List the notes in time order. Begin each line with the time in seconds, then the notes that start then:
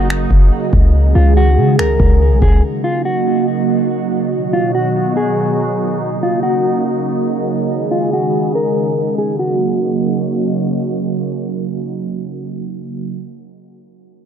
Already playing: F#1 C#3 F#3 A#3 D#4 F#4
0.10 finger snap
0.31 F#1, kick
0.73 C#2, kick
0.94 D#3 G#3 G#4
1.15 C#2 F4
1.37 F#4
1.58 C#3
1.79 C#2 A#4, finger snap
2.00 C#2, kick
2.31 B1
2.42 C#2 G#4, kick
2.63 F#3 A#3 D#4 F#4
2.84 F4
3.05 F#4
4.32 B2 D#3 D#4 F#4
4.53 F4
4.75 F#4
5.17 G#4
6.01 C#3 A#3 F#4
6.23 F4
6.43 F#4
7.70 D#3 G#3 G#4
7.91 F4
8.13 F#4
8.55 A#4
9.18 G#4
9.39 C#3 F#3 A#3 D#4 F#4